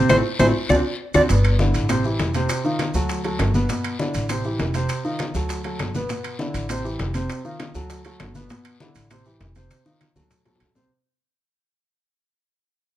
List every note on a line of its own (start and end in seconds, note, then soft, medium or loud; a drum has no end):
0.09 0.21 A1 medium
0.09 0.19 A3 medium
0.09 0.19 C4 medium
0.09 0.19 E4 medium
0.09 0.17 C5 medium
0.09 high bongo loud
0.09 high conga loud
0.09 high timbale medium
0.09 long guiro loud
0.09 claves loud
0.09 maracas medium
0.39 0.51 A1 loud
0.39 0.49 A3 medium
0.39 0.49 C4 loud
0.39 0.50 E4 loud
0.39 0.47 C5 medium
0.39 high bongo medium
0.39 high conga loud
0.39 high timbale loud
0.39 long guiro loud
0.39 claves medium
0.39 maracas medium
0.69 0.81 D2 loud
0.69 0.79 C4 medium
0.69 0.79 D4 medium
0.69 0.79 F#4 medium
0.69 0.77 D5 medium
0.69 high bongo medium
0.69 high conga medium
0.69 high timbale medium
0.69 long guiro medium
0.69 claves medium
0.69 maracas loud
1.14 1.26 D2 medium
1.14 1.24 C4 medium
1.14 1.24 D4 medium
1.14 1.24 F#4 medium
1.14 1.22 D5 medium
1.14 high bongo medium
1.14 high conga medium
1.14 high timbale loud
1.14 long guiro loud
1.14 claves loud
1.14 maracas medium
1.29 1.72 G1 medium
1.29 1.54 B2 medium
1.29 1.55 B3 medium
1.29 1.55 B4 medium
1.29 high bongo medium
1.29 high conga soft
1.29 high timbale medium
1.29 long guiro medium
1.29 maracas medium
1.44 high conga soft
1.44 high timbale medium
1.44 claves medium
1.44 maracas soft
1.59 1.84 D3 medium
1.59 1.84 D4 medium
1.59 1.85 E4 medium
1.59 high bongo medium
1.59 high conga medium
1.59 short guiro medium
1.59 maracas soft
1.74 2.16 A1 medium
1.74 high conga soft
1.74 high timbale medium
1.74 short guiro medium
1.74 maracas medium
1.89 2.02 C3 medium
1.89 2.02 C4 medium
1.89 2.02 C5 medium
1.89 high bongo medium
1.89 high conga soft
1.89 high timbale medium
1.89 long guiro medium
1.89 claves medium
1.89 maracas medium
2.04 2.29 E3 medium
2.04 2.29 E4 medium
2.04 2.30 G4 medium
2.04 high conga soft
2.04 maracas soft
2.19 2.46 F1 medium
2.19 high bongo medium
2.19 low bongo medium
2.19 high conga medium
2.19 high timbale medium
2.19 short guiro medium
2.19 maracas soft
2.34 2.59 C3 medium
2.34 2.59 C4 medium
2.34 2.60 C5 medium
2.34 high timbale medium
2.34 short guiro medium
2.34 maracas medium
2.49 high bongo medium
2.49 high conga soft
2.49 high timbale medium
2.49 long guiro medium
2.49 claves medium
2.49 maracas medium
2.64 2.89 D#3 medium
2.64 2.89 D#4 medium
2.64 2.89 F4 medium
2.64 high bongo soft
2.64 high conga soft
2.64 maracas soft
2.79 high bongo medium
2.79 high conga medium
2.79 high timbale medium
2.79 short guiro medium
2.79 claves medium
2.79 maracas soft
2.94 3.36 D2 medium
2.94 3.19 F#3 medium
2.94 3.19 F#4 medium
2.94 3.20 A4 medium
2.94 high bongo soft
2.94 short guiro medium
2.94 maracas medium
3.09 high bongo medium
3.09 high conga soft
3.09 high timbale medium
3.09 long guiro medium
3.09 maracas medium
3.24 3.49 F#3 medium
3.24 3.49 F#4 medium
3.24 3.49 A4 medium
3.24 high conga soft
3.24 high timbale medium
3.24 maracas soft
3.39 3.66 G1 medium
3.39 high bongo medium
3.39 low bongo medium
3.39 high conga medium
3.39 high timbale medium
3.39 low timbale medium
3.39 short guiro medium
3.39 claves medium
3.39 maracas soft
3.54 3.67 B2 medium
3.54 3.67 B3 medium
3.54 3.67 B4 medium
3.54 high bongo soft
3.54 high conga medium
3.54 short guiro medium
3.54 maracas medium
3.69 3.94 B2 medium
3.69 3.94 B3 medium
3.69 3.94 B4 medium
3.69 high bongo medium
3.69 high conga soft
3.69 high timbale medium
3.69 long guiro medium
3.69 maracas medium
3.84 high conga soft
3.84 high timbale medium
3.84 claves medium
3.84 maracas soft
3.99 4.24 D3 medium
3.99 4.24 D4 medium
3.99 4.24 E4 medium
3.99 high bongo medium
3.99 high conga medium
3.99 short guiro medium
3.99 maracas soft
4.14 4.56 A1 medium
4.14 high conga soft
4.14 high timbale medium
4.14 short guiro medium
4.14 maracas medium
4.29 4.42 C3 medium
4.29 4.42 C4 medium
4.29 4.42 C5 medium
4.29 high bongo medium
4.29 high conga soft
4.29 high timbale medium
4.29 claves medium
4.29 maracas medium
4.44 4.69 E3 medium
4.44 4.69 E4 medium
4.44 4.70 G4 medium
4.44 high conga soft
4.44 maracas soft
4.59 4.86 F1 medium
4.59 high bongo medium
4.59 low bongo medium
4.59 high conga medium
4.59 high timbale medium
4.59 low timbale medium
4.59 short guiro medium
4.59 maracas soft
4.74 4.99 C3 medium
4.74 4.99 C4 medium
4.74 4.99 C5 medium
4.74 high timbale medium
4.74 short guiro medium
4.74 maracas medium
4.89 high bongo medium
4.89 high conga soft
4.89 high timbale medium
4.89 long guiro medium
4.89 claves medium
4.89 maracas medium
5.04 5.29 D#3 medium
5.04 5.29 D#4 medium
5.04 5.30 F4 medium
5.04 high bongo soft
5.04 high conga soft
5.04 maracas soft
5.19 high bongo medium
5.19 high conga medium
5.19 high timbale medium
5.19 short guiro medium
5.19 claves medium
5.19 maracas soft
5.35 5.76 D2 medium
5.35 5.59 F#3 medium
5.35 5.59 F#4 medium
5.35 5.60 A4 medium
5.35 high bongo soft
5.35 short guiro medium
5.35 maracas medium
5.49 high bongo medium
5.49 high conga soft
5.49 high timbale medium
5.49 long guiro medium
5.49 maracas medium
5.64 5.89 F#3 medium
5.64 5.89 F#4 medium
5.64 5.90 A4 medium
5.64 high conga soft
5.64 high timbale medium
5.64 maracas soft
5.79 6.06 G1 medium
5.79 high bongo medium
5.79 low bongo medium
5.79 high conga medium
5.79 high timbale medium
5.79 short guiro medium
5.79 claves medium
5.79 maracas soft
5.95 6.07 B2 medium
5.95 6.08 B3 medium
5.95 6.08 B4 medium
5.95 high bongo soft
5.95 high conga medium
5.95 short guiro medium
5.95 maracas medium
6.09 6.34 B2 medium
6.09 6.35 B3 medium
6.09 6.35 B4 medium
6.09 high bongo medium
6.09 high conga soft
6.09 high timbale medium
6.09 long guiro medium
6.09 maracas medium
6.24 high conga soft
6.24 high timbale medium
6.24 claves medium
6.24 maracas soft
6.39 6.65 D3 medium
6.39 6.65 D4 medium
6.39 6.65 E4 medium
6.39 high bongo medium
6.39 high conga medium
6.39 short guiro medium
6.39 maracas soft
6.54 6.96 A1 medium
6.54 high conga soft
6.54 high timbale medium
6.54 short guiro medium
6.54 maracas medium
6.69 6.82 C3 medium
6.69 6.82 C4 medium
6.69 6.82 C5 medium
6.69 high bongo medium
6.69 high conga soft
6.69 high timbale medium
6.69 long guiro medium
6.69 claves medium
6.69 maracas medium
6.84 7.09 E3 medium
6.84 7.09 E4 medium
6.84 7.10 G4 medium
6.84 high conga soft
6.84 maracas soft
6.99 7.26 F1 medium
6.99 high bongo medium
6.99 low bongo medium
6.99 high conga medium
6.99 high timbale medium
6.99 short guiro medium
6.99 maracas soft
7.14 7.39 C3 medium
7.14 7.40 C4 medium
7.14 7.40 C5 medium
7.14 high conga medium
7.14 high timbale medium
7.14 short guiro medium
7.14 maracas medium
7.29 high bongo medium
7.29 high timbale medium
7.29 long guiro medium
7.29 claves medium
7.29 maracas medium
7.45 7.69 D#3 medium
7.45 7.70 D#4 medium
7.45 7.70 F4 medium
7.45 high bongo soft
7.45 high conga soft
7.45 maracas soft
7.59 high bongo medium
7.59 high conga medium
7.59 high timbale medium
7.59 short guiro medium
7.59 claves medium
7.59 maracas soft
7.75 8.17 D2 medium
7.75 8.00 F#3 medium
7.75 8.00 F#4 medium
7.75 8.00 A4 medium
7.75 high bongo soft
7.75 short guiro medium
7.75 maracas medium
7.90 high bongo medium
7.90 high conga soft
7.90 high timbale medium
7.90 long guiro medium
7.90 maracas medium
8.05 8.30 F#3 medium
8.05 8.30 F#4 medium
8.05 8.30 A4 medium
8.05 high conga soft
8.05 high timbale medium
8.05 maracas soft
8.20 8.47 G1 medium
8.20 high bongo medium
8.20 low bongo medium
8.20 high conga medium
8.20 high timbale medium
8.20 short guiro medium
8.20 claves medium
8.20 maracas soft
8.35 8.47 B2 medium
8.35 8.48 B3 medium
8.35 8.48 B4 medium
8.35 high bongo soft
8.35 high conga medium
8.35 short guiro medium
8.35 maracas medium
8.50 8.75 B2 medium
8.50 8.75 B3 medium
8.50 8.75 B4 medium
8.50 high bongo medium
8.50 high conga soft
8.50 high timbale medium
8.50 long guiro medium
8.50 maracas medium
8.65 high conga soft
8.65 high timbale medium
8.65 claves medium
8.65 maracas soft
8.80 9.05 D3 medium
8.80 9.05 D4 medium
8.80 9.06 E4 medium
8.80 high bongo medium
8.80 high conga loud
8.80 short guiro medium
8.80 maracas soft
8.95 9.37 A1 medium
8.95 high conga soft
8.95 high timbale medium
8.95 short guiro medium
8.95 maracas medium
9.10 9.23 C3 medium
9.10 9.23 C4 medium
9.10 9.23 C5 medium
9.10 high bongo medium
9.10 high conga soft
9.10 high timbale medium
9.10 long guiro medium
9.10 claves medium
9.10 maracas medium
9.25 9.50 E3 medium
9.25 9.51 E4 medium
9.25 9.51 G4 medium
9.25 high conga soft
9.25 maracas soft
9.40 9.67 F1 medium
9.40 high bongo medium
9.40 low bongo medium
9.40 high conga medium
9.40 high timbale medium
9.40 low timbale medium
9.40 short guiro medium
9.40 maracas soft
9.55 9.80 C3 medium
9.55 9.81 C4 medium
9.55 9.81 C5 medium
9.55 high conga medium
9.55 high timbale medium
9.55 short guiro medium
9.55 maracas medium
9.70 high bongo medium
9.70 high conga medium
9.70 high timbale medium
9.70 long guiro medium
9.70 claves medium
9.70 maracas medium
9.85 10.10 D#3 medium
9.85 10.10 D#4 medium
9.85 10.11 F4 medium
9.85 high bongo soft
9.85 high conga medium
9.85 maracas soft
10.01 high bongo medium
10.01 high conga medium
10.01 high timbale medium
10.01 short guiro medium
10.01 claves medium
10.01 maracas soft
10.16 10.58 D2 medium
10.16 10.40 F#3 medium
10.16 10.40 F#4 medium
10.16 10.41 A4 medium
10.16 high bongo soft
10.16 high conga medium
10.16 short guiro medium
10.16 maracas medium
10.31 high bongo medium
10.31 low conga medium
10.31 high timbale medium
10.31 long guiro medium
10.31 maracas medium
10.45 10.71 F#3 medium
10.45 10.71 F#4 medium
10.45 10.71 A4 medium
10.45 high bongo medium
10.45 low conga medium
10.45 high timbale medium
10.45 maracas soft
10.56 high bongo medium
10.60 10.88 D2 medium
10.60 low conga medium
10.60 high timbale medium
10.60 short guiro medium
10.60 claves medium
10.66 low bongo medium
10.75 10.88 C3 medium
10.75 10.88 C4 medium
10.75 10.89 C5 medium
10.75 low bongo medium
10.75 low conga medium
10.75 short guiro medium
10.75 maracas medium